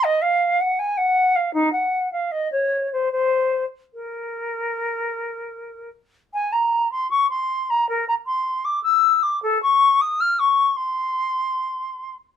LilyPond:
\new Staff \with { instrumentName = "Flute" } { \time 4/4 \key bes \minor \tempo 4 = 78 ees''16 f''8 ges''16 aes''16 ges''8 f''16 ees'16 ges''8 f''16 ees''16 des''8 c''16 | c''8. r16 bes'2~ bes'8 r8 | aes''16 bes''8 c'''16 des'''16 c'''8 bes''16 bes'16 bes''16 c'''8 d'''16 e'''8 d'''16 | a'16 des'''8 ees'''16 f'''16 des'''8 c'''2~ c'''16 | }